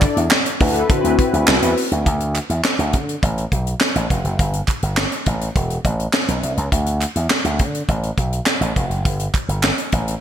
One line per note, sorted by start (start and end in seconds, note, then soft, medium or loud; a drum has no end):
0.00 0.21 D4 medium
0.00 0.21 E4 medium
0.00 0.21 A4 medium
0.00 0.21 D5 loud
0.00 kick loud
0.00 clap medium
0.00 closed hi-hat medium
0.17 0.27 E2 medium
0.17 closed hi-hat medium
0.31 snare medium
0.31 clap loud
0.31 clap medium
0.46 closed hi-hat medium
0.60 0.82 D2 loud
0.60 0.89 D4 medium
0.60 0.88 E4 medium
0.60 0.90 A4 medium
0.60 0.89 B4 loud
0.60 kick loud
0.60 open hi-hat medium
0.76 closed hi-hat medium
0.89 1.00 D3 loud
0.89 1.83 C4 loud
0.89 1.83 E4 medium
0.89 1.83 F#4 medium
0.89 1.83 B4 loud
0.89 kick loud
0.89 closed hi-hat medium
1.04 1.15 D2 medium
1.04 closed hi-hat medium
1.19 kick medium
1.19 closed hi-hat medium
1.33 1.44 D2 medium
1.33 closed hi-hat soft
1.48 1.58 C2 loud
1.48 snare loud
1.48 clap medium
1.48 clap loud
1.62 1.73 E2 medium
1.62 closed hi-hat medium
1.77 open hi-hat medium
1.92 2.02 D2 loud
1.92 closed hi-hat soft
2.06 2.38 D2 loud
2.06 kick loud
2.06 closed hi-hat medium
2.20 closed hi-hat soft
2.35 clap medium
2.35 closed hi-hat medium
2.49 2.60 E2 medium
2.49 closed hi-hat medium
2.64 snare loud
2.64 clap medium
2.79 2.95 D2 medium
2.79 closed hi-hat soft
2.93 3.15 D3 loud
2.93 kick medium
2.93 closed hi-hat medium
3.09 closed hi-hat medium
3.23 3.44 A1 medium
3.23 kick loud
3.23 closed hi-hat medium
3.38 closed hi-hat soft
3.52 3.73 B1 medium
3.52 kick medium
3.52 closed hi-hat medium
3.67 closed hi-hat soft
3.80 snare medium
3.80 clap medium
3.95 4.06 A1 medium
3.95 closed hi-hat medium
4.10 4.21 F1 medium
4.10 kick medium
4.10 closed hi-hat medium
4.24 4.35 F#1 medium
4.24 closed hi-hat soft
4.39 4.60 G1 loud
4.39 kick loud
4.39 closed hi-hat medium
4.53 closed hi-hat soft
4.68 kick medium
4.68 clap medium
4.68 closed hi-hat medium
4.83 5.04 G1 medium
4.83 closed hi-hat soft
4.97 snare medium
4.97 clap medium
5.12 closed hi-hat medium
5.26 5.48 A1 medium
5.26 kick medium
5.26 closed hi-hat medium
5.41 closed hi-hat medium
5.55 5.77 E1 medium
5.55 kick loud
5.55 closed hi-hat medium
5.70 closed hi-hat medium
5.85 6.06 A1 medium
5.85 kick medium
5.85 closed hi-hat medium
6.00 closed hi-hat soft
6.13 snare loud
6.13 clap medium
6.28 6.39 B1 medium
6.28 closed hi-hat medium
6.43 6.54 C2 medium
6.43 closed hi-hat medium
6.57 6.68 C#2 medium
6.57 closed hi-hat soft
6.72 7.04 D2 loud
6.72 kick loud
6.72 closed hi-hat medium
6.86 closed hi-hat soft
7.01 clap medium
7.01 closed hi-hat medium
7.16 7.26 E2 medium
7.16 closed hi-hat medium
7.30 snare medium
7.30 clap medium
7.44 7.61 D2 medium
7.44 closed hi-hat medium
7.59 7.81 D3 loud
7.59 kick medium
7.59 closed hi-hat medium
7.75 closed hi-hat medium
7.89 8.10 A1 medium
7.89 kick loud
7.89 closed hi-hat medium
8.03 closed hi-hat medium
8.17 8.39 B1 medium
8.17 kick medium
8.17 closed hi-hat medium
8.33 closed hi-hat soft
8.46 snare medium
8.46 clap medium
8.61 8.72 A1 medium
8.61 closed hi-hat medium
8.76 8.87 F1 medium
8.76 kick medium
8.76 closed hi-hat medium
8.90 9.01 F#1 medium
8.90 closed hi-hat soft
9.05 9.26 G1 loud
9.05 kick loud
9.05 closed hi-hat medium
9.20 closed hi-hat medium
9.34 kick loud
9.34 clap medium
9.34 closed hi-hat medium
9.48 9.70 G1 medium
9.48 closed hi-hat medium
9.63 snare medium
9.63 clap loud
9.63 clap medium
9.78 closed hi-hat medium
9.92 10.14 A1 medium
9.92 kick medium
9.92 closed hi-hat medium
10.08 closed hi-hat soft